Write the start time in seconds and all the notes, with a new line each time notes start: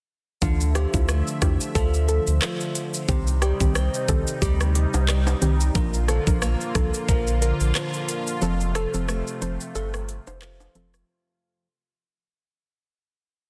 0.42 D2 D3 E3 F3 D4 F4 E5, kick, shaker
0.61 shaker
0.75 F3 G4, cross-stick, closed hi-hat, shaker
0.94 D2 D4 E4 F4, kick, shaker
1.08 A3, cross-stick, shaker
1.27 shaker
1.42 E2 D4 E4 F4 G4, kick, cross-stick, closed hi-hat, shaker
1.61 shaker
1.75 D2 F3 A4, kick, shaker
1.94 shaker
2.08 A4, closed hi-hat, shaker
2.27 D2, shaker
2.42 F3, cross-stick, clap, shaker
2.60 shaker
2.75 closed hi-hat, shaker
2.94 shaker
3.08 C2 C3 D#3 G3 C4 D#4 G4, kick, shaker
3.27 shaker
3.42 G3 G4, cross-stick, closed hi-hat, shaker
3.60 C2 D#3 C4 G4, kick, shaker
3.75 C4, cross-stick, shaker
3.94 shaker
4.08 C2 D#3 C4 G4 A4, kick, closed hi-hat, shaker
4.27 shaker
4.42 D2 G3 G4, kick, shaker
4.61 cross-stick, shaker
4.75 G4, closed hi-hat, shaker
4.94 C2, high timbale, shaker
5.08 G3, cross-stick, clap, shaker
5.27 high timbale, shaker
5.42 C2 D#3 C4 G4, closed hi-hat, shaker
5.60 shaker
5.75 A#1 A#2 D3 F3 A#3 D4 F4 A#4, kick, shaker
5.94 shaker
6.08 F3 A4, cross-stick, closed hi-hat, shaker
6.27 A#1 F3 D4 A#4, kick, shaker
6.42 A#3, cross-stick, shaker
6.61 shaker
6.75 C2 F3 D4 A4 A#4, kick, cross-stick, closed hi-hat, shaker
6.94 shaker
7.09 A#1 F3 A#4, kick, shaker
7.27 shaker
7.42 A#4, closed hi-hat, shaker
7.60 A#1, shaker
7.75 F3, cross-stick, clap, shaker
7.93 shaker
8.09 closed hi-hat, shaker
8.27 shaker
8.42 F1 F2 C3 F3 A3 C4 A4, shaker
8.60 shaker
8.75 F3 A4, cross-stick, closed hi-hat, shaker
8.94 F1 F3 C4 A4, shaker
9.08 A3, cross-stick, shaker
9.27 shaker
9.41 F1 F3 C4 A4 C5, closed hi-hat, shaker
9.61 shaker
9.75 G1 C3 A4, shaker
9.94 cross-stick, shaker
10.09 closed hi-hat, shaker
10.27 F1 C5, high timbale, shaker
10.42 F3, cross-stick, clap, shaker
10.60 high timbale, shaker
10.75 F1 F3 C4 A4, closed hi-hat, shaker
10.94 cross-stick, shaker